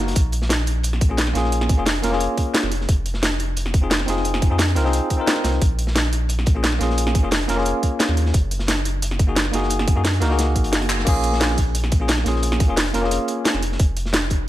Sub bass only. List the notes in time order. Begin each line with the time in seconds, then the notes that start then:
Already playing: F#1
0.16 A#1
1.35 A#1
1.78 F1
2.04 F1
2.64 F1
2.89 F1
4.08 F1
4.51 F2
4.76 C2
5.44 C2
5.62 A#1
6.81 A#1
7.24 F1
7.49 F1
8.09 D#2
8.34 F#1
9.53 F#1
9.96 F#2
10.21 C#2
10.56 A#1
10.64 F#1
11.07 A#1
12.26 A#1
12.69 F1
12.94 F1
13.54 F1
13.80 F1